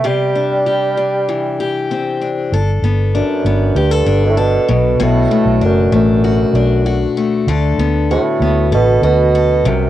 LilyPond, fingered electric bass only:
\new Staff \with { instrumentName = "Fingered electric bass" } { \clef bass \time 4/4 \key g \major \tempo 4 = 97 r1 | g,,8 g,,8. r16 g,,8 d,8 g,,4 b,,8 | b,,8 r16 b,,16 fis,,8 a,,4 b,,4 r8 | d,8 d,8. r16 d,8 a,,8 d,4 c,8 | }